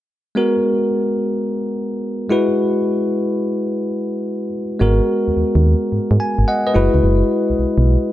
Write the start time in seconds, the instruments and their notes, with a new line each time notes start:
0.35 tine electric piano G#3 B3 F#4 A#4
2.30 tine electric piano G#3 E4 F#4 B4
4.79 fm bass G#1, tine electric piano G#3 B3 F#4 A#4
5.28 fm bass D#2
5.37 fm bass D#2
5.55 fm bass D#2
5.92 fm bass G#2
6.11 fm bass G#2
6.20 tine electric piano G#5
6.39 fm bass G#1
6.48 tine electric piano D#5 F#5
6.67 tine electric piano B4 D#5
6.74 fm bass F#1, tine electric piano G#3 E4 F#4 B4
6.94 fm bass C#2
7.04 fm bass F#1
7.50 fm bass B1
7.59 fm bass B1
7.78 fm bass B1